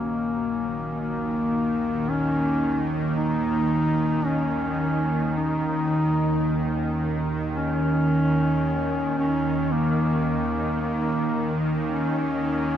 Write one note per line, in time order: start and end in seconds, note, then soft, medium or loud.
0.00 12.77 D#2 medium
0.00 12.77 D#3 medium
0.00 0.99 A#3 medium
0.00 12.77 A#3 medium
0.00 12.77 F#4 medium
0.00 12.77 D#5 medium
1.00 2.11 A#3 medium
2.09 2.90 C#4 loud
3.16 4.28 D#4 loud
4.26 5.35 C#4 medium
5.36 6.95 D#4 medium
7.56 9.14 C#4 loud
9.17 9.73 C#4 loud
9.72 10.80 A#3 medium
10.82 11.58 A#3 medium
11.88 12.77 C#4 loud